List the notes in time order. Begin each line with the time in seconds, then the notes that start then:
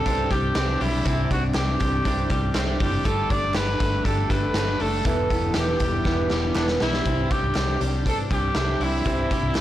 Already playing: C3 G3 G4 A4
0.06 C2 C3 E3 C4 D4 G4, kick, closed hi-hat
0.30 C2 G3 D4 G4, kick, clap, closed hi-hat
0.35 C4
0.55 C2 E3 C4 D4 G4, snare, clap, closed hi-hat
0.68 D4
0.81 B1 G3 D4 E4 G4, open hi-hat
0.85 C4
1.05 C2 C3 E3 C4 D4 E4 G4, kick, closed hi-hat
1.31 C2 C4 D4 F#4 G4, kick, closed hi-hat
1.54 C2 E3 C4 D4 G4, snare, clap, closed hi-hat
1.59 G4
1.79 C2 G3 C4 D4 G4, kick, closed hi-hat
2.05 C2 C3 E3 C4 D4 G4, kick, closed hi-hat
2.30 C2 G3 C4 D4 G4, kick, clap, closed hi-hat
2.55 C2 E3 C4 D4 G4, snare, clap, closed hi-hat
2.67 D4
2.80 F#1 G3 C4 D4 G4, kick, open hi-hat
3.05 G1 G3 A3 D4 G4 A4, kick, closed hi-hat
3.30 G1 A3 D4 G4 D5, kick, closed hi-hat
3.54 G1 G3 A3 D4 G4 B4, snare, clap, closed hi-hat
3.80 G1 A3 D4 G4, kick, closed hi-hat
4.05 G1 G3 A3 D4 G4 A4, kick, closed hi-hat
4.30 G1 A3 D4 G4 B4, kick, clap, closed hi-hat
4.54 G1 G3 A3 C4 D4, snare, clap, closed hi-hat
4.58 G4
4.68 D4
4.79 F#1 A3 D4 G4 A4, open hi-hat
5.05 E1 E2 E3 B3 E4 G4 A4, kick, closed hi-hat
5.30 E1 B3 E4 G4, kick, closed hi-hat
5.54 E1 E3 B3 E4 G4, snare, clap, closed hi-hat
5.58 G4
5.80 E1 G3 B3 E4 G4, kick, closed hi-hat
6.04 E1 E3 B3 E4 G4, kick, snare
6.29 E1 G3 B3 E4 G4, snare, clap
6.55 E1 E3 B3 D4 E4 G4, snare, clap
6.68 snare
6.80 B1 G3 B3 E4 G4, snare
6.93 snare
7.05 C2 C3 E3 C4 D4 G4, kick, closed hi-hat
7.30 G3 C4 D4 G4, kick, closed hi-hat
7.42 C2
7.55 C2 C3 E3 C4 D4 G4, snare, clap, closed hi-hat
7.80 C2 G3 C4 D4 G4, closed hi-hat
8.05 E3 C4 D4 G4 A4, kick, closed hi-hat
8.30 C2 G3 C4 D4 G4, kick, closed hi-hat
8.55 C2 C3 E3 C4 D4 G4, snare, clap, closed hi-hat
8.79 C2 C4 D4 E4 G4, open hi-hat
9.04 C2 C3 E3 C4 D4 G4, kick, closed hi-hat
9.30 G3 C4 D4 G4, kick, closed hi-hat
9.43 C2
9.55 C2 C3 E3 C4 D4, snare, clap, closed hi-hat